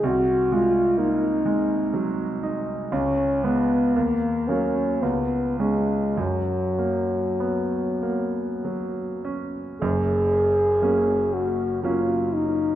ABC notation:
X:1
M:3/4
L:1/8
Q:1/4=58
K:F#
V:1 name="French horn"
F E D3 z | C B, A, C B, G, | F,4- F, z | G3 F E D |]
V:2 name="Grand piano" clef=bass
^B,,, G, A, G, F, D | C,, [G,B,] D,, [F,A,] C,, [G,C] | F,, A, B, A, F, C | [F,,,F,,]2 [F,A,C]2 [F,A,C]2 |]